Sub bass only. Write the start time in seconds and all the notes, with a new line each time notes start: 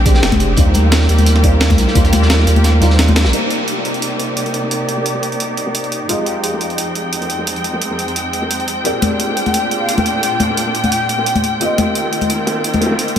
Already playing: A#1
0.23 F1
0.57 D#2
1.09 D#2
1.78 C2
1.95 D#2
2.47 D#2
2.81 D#2
3.25 A#1